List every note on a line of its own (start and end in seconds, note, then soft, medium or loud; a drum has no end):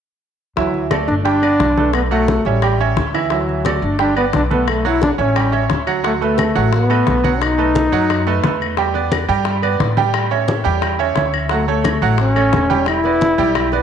0.57 1.05 D2 medium
0.57 0.85 E3 medium
0.57 0.89 F#3 medium
0.57 0.85 E4 medium
0.57 0.86 E5 medium
0.57 high bongo medium
0.57 high conga soft
0.74 high conga soft
0.91 1.19 A3 medium
0.91 1.19 A4 medium
0.91 1.19 D5 medium
0.91 high bongo medium
0.91 high conga medium
0.91 claves medium
1.08 1.56 G1 medium
1.08 1.16 D4 medium
1.08 high conga soft
1.25 1.39 G3 medium
1.25 1.90 D4 loud
1.25 1.39 G4 medium
1.25 1.39 G5 medium
1.25 high bongo medium
1.25 high conga soft
1.42 1.70 B3 medium
1.42 1.71 B4 medium
1.42 1.71 D5 medium
1.42 high conga soft
1.42 claves medium
1.60 2.40 B1 medium
1.60 high bongo medium
1.60 low bongo medium
1.60 high conga medium
1.77 2.05 A3 medium
1.77 2.05 A4 medium
1.77 2.06 B4 medium
1.77 high conga medium
1.93 2.02 B3 medium
1.93 high bongo medium
1.93 high conga soft
1.93 claves medium
2.11 2.39 F#3 medium
2.11 2.48 A3 medium
2.11 2.39 F#4 medium
2.11 2.39 F#5 medium
2.11 high bongo soft
2.11 high conga soft
2.28 high bongo medium
2.28 high conga medium
2.45 2.93 A1 medium
2.45 2.80 G3 medium
2.45 2.60 C#4 medium
2.45 2.60 C#5 medium
2.45 2.60 E5 medium
2.45 high bongo soft
2.45 high conga soft
2.62 2.77 G3 medium
2.62 2.77 G4 medium
2.62 2.77 G5 medium
2.62 high bongo medium
2.62 high conga soft
2.62 claves medium
2.79 3.08 C#4 medium
2.79 3.08 C#5 medium
2.79 3.09 E5 medium
2.79 high bongo soft
2.79 high conga soft
2.97 3.77 D2 medium
2.97 high bongo medium
2.97 low bongo medium
2.97 high conga medium
3.14 3.28 E3 medium
3.14 3.28 E4 medium
3.14 3.29 E5 medium
3.14 high conga soft
3.14 claves medium
3.30 3.59 E3 medium
3.30 3.79 F#3 medium
3.30 3.59 E4 medium
3.30 3.59 E5 medium
3.30 high bongo medium
3.30 high conga soft
3.49 high conga soft
3.65 3.93 A3 medium
3.65 3.94 A4 medium
3.65 3.94 D5 medium
3.65 high bongo medium
3.65 high conga medium
3.65 claves medium
3.82 4.30 G1 medium
3.82 3.99 D4 medium
3.82 high conga soft
3.99 4.13 G3 medium
3.99 4.16 D4 medium
3.99 4.13 G4 medium
3.99 4.14 G5 medium
3.99 high bongo medium
3.99 high conga soft
4.16 4.44 B3 medium
4.16 4.25 B3 medium
4.16 4.45 B4 medium
4.16 4.45 D5 medium
4.16 high conga soft
4.16 claves medium
4.33 5.13 B1 medium
4.33 4.43 D4 medium
4.33 high bongo medium
4.33 low bongo medium
4.33 high conga medium
4.50 4.79 A3 medium
4.50 4.71 B3 medium
4.50 4.79 A4 medium
4.50 4.79 B4 medium
4.50 high conga medium
4.68 4.89 A3 medium
4.68 high bongo medium
4.68 high conga soft
4.68 claves medium
4.85 5.13 F#3 medium
4.85 5.03 E4 loud
4.85 5.13 F#4 medium
4.85 5.13 F#5 medium
4.85 high bongo soft
4.85 high conga soft
5.02 5.11 D4 medium
5.02 high bongo medium
5.02 high conga medium
5.18 5.67 A1 medium
5.18 5.33 C#4 medium
5.18 5.84 C#4 medium
5.18 5.33 C#5 medium
5.18 5.33 E5 medium
5.18 high bongo soft
5.18 high conga soft
5.36 5.50 G3 medium
5.36 5.50 G4 medium
5.36 5.50 G5 medium
5.36 high bongo medium
5.36 high conga soft
5.36 claves medium
5.52 5.81 C#4 medium
5.52 5.81 C#5 medium
5.52 5.81 E5 medium
5.52 high bongo soft
5.52 high conga soft
5.70 6.50 D2 medium
5.70 high bongo medium
5.70 low bongo medium
5.70 high conga medium
5.87 6.01 F#3 medium
5.87 6.01 F#4 medium
5.87 6.01 F#5 medium
5.87 high conga soft
5.87 claves medium
6.03 6.18 F#3 medium
6.03 6.14 A3 medium
6.03 6.18 F#4 medium
6.03 6.18 F#5 medium
6.03 high bongo medium
6.03 high conga soft
6.21 6.49 A3 medium
6.21 6.70 A3 medium
6.21 6.50 A4 medium
6.21 6.50 B4 medium
6.21 high conga soft
6.38 high bongo medium
6.38 high conga medium
6.38 claves medium
6.55 7.03 A1 medium
6.55 6.84 F#3 medium
6.55 6.84 F#4 medium
6.55 6.84 F#5 medium
6.55 high conga soft
6.73 7.44 B3 medium
6.73 high bongo medium
6.73 high conga soft
6.90 7.18 A3 medium
6.90 7.18 A4 medium
6.90 7.18 B4 medium
6.90 high conga soft
6.90 claves medium
7.07 7.87 B1 medium
7.07 high bongo medium
7.07 low bongo medium
7.07 high conga medium
7.24 7.52 F#3 medium
7.24 7.52 F#4 medium
7.24 7.52 F#5 medium
7.24 high conga medium
7.42 8.61 D#4 loud
7.42 high bongo medium
7.42 high conga soft
7.42 claves medium
7.58 7.86 A3 medium
7.58 7.86 A4 medium
7.58 7.86 B4 medium
7.58 high bongo soft
7.58 high conga soft
7.75 high bongo medium
7.75 high conga medium
7.92 8.40 F#2 medium
7.92 8.20 F#3 medium
7.92 8.21 F#4 medium
7.92 8.21 F#5 medium
7.92 high bongo soft
7.92 high conga soft
8.10 high bongo medium
8.10 high conga soft
8.10 claves medium
8.27 8.41 A3 medium
8.27 8.41 A4 medium
8.27 8.41 B4 medium
8.27 high bongo soft
8.27 high conga soft
8.44 9.23 E2 medium
8.44 8.72 A3 medium
8.44 8.72 A4 medium
8.44 8.72 B4 medium
8.44 high bongo medium
8.44 low bongo medium
8.44 high conga medium
8.61 high conga soft
8.61 claves medium
8.77 8.92 G3 medium
8.77 8.92 G4 medium
8.77 8.92 G5 medium
8.77 high bongo medium
8.77 high conga soft
8.94 9.22 B3 medium
8.94 9.23 B4 medium
8.94 9.23 D5 medium
8.94 high conga soft
9.12 high bongo medium
9.12 high conga medium
9.12 claves medium
9.29 9.76 G2 medium
9.29 9.57 G3 medium
9.29 9.57 G4 medium
9.29 9.57 G5 medium
9.29 high conga soft
9.45 high bongo medium
9.45 high conga soft
9.62 9.91 B3 medium
9.62 9.91 B4 medium
9.62 9.91 D5 medium
9.62 high conga soft
9.62 claves medium
9.80 10.60 A2 medium
9.80 high bongo medium
9.80 low bongo medium
9.80 high conga medium
9.97 10.25 G3 medium
9.97 10.25 G4 medium
9.97 10.26 G5 medium
9.97 high conga medium
10.14 high bongo medium
10.14 high conga soft
10.14 claves medium
10.31 10.59 C#4 medium
10.31 10.59 C#5 medium
10.31 10.59 E5 medium
10.31 high bongo soft
10.31 high conga soft
10.48 high bongo medium
10.48 high conga medium
10.64 11.13 E2 medium
10.64 10.93 G3 medium
10.64 10.93 G4 medium
10.64 10.93 G5 medium
10.64 high bongo soft
10.64 high conga soft
10.82 high bongo medium
10.82 high conga soft
10.82 claves medium
10.99 11.13 C#4 medium
10.99 11.14 C#5 medium
10.99 11.14 E5 medium
10.99 high bongo soft
10.99 high conga soft
11.16 11.96 D2 medium
11.16 11.44 C#4 medium
11.16 11.44 C#5 medium
11.16 11.45 E5 medium
11.16 high bongo medium
11.16 low bongo medium
11.16 high conga medium
11.34 high conga soft
11.34 claves medium
11.49 11.64 F#3 medium
11.49 11.68 A3 medium
11.49 11.65 F#4 medium
11.49 11.65 F#5 medium
11.49 high bongo medium
11.49 high conga soft
11.68 11.96 A3 medium
11.68 12.16 A3 medium
11.68 11.96 A4 medium
11.68 11.96 C#5 medium
11.68 high conga soft
11.84 high bongo medium
11.84 high conga medium
11.84 claves medium
12.02 12.49 A1 medium
12.02 12.30 F#3 medium
12.02 12.30 F#4 medium
12.02 12.30 F#5 medium
12.02 high conga soft
12.18 12.84 C#4 loud
12.18 high bongo medium
12.18 high conga soft
12.36 12.64 A3 medium
12.36 12.64 A4 medium
12.36 12.64 C#5 medium
12.36 high conga soft
12.36 claves medium
12.53 13.33 E1 medium
12.53 high bongo medium
12.53 low bongo medium
12.53 high conga medium
12.70 12.98 G3 medium
12.70 12.98 G4 medium
12.70 12.98 G5 medium
12.70 high conga medium
12.86 13.82 E4 loud
12.86 high bongo medium
12.86 high conga soft
12.86 claves medium
13.04 13.32 B3 medium
13.04 13.33 B4 medium
13.04 13.33 D5 medium
13.04 high bongo soft
13.04 high conga soft
13.21 high bongo medium
13.21 high conga medium
13.38 13.82 B1 medium
13.38 13.66 G3 medium
13.38 13.66 G4 medium
13.38 13.67 G5 medium
13.38 high bongo soft
13.38 high conga soft
13.55 high bongo medium
13.55 high conga soft
13.55 claves medium
13.72 13.82 B3 medium
13.72 13.82 B4 medium
13.72 13.82 D5 medium
13.72 high bongo soft
13.72 high conga soft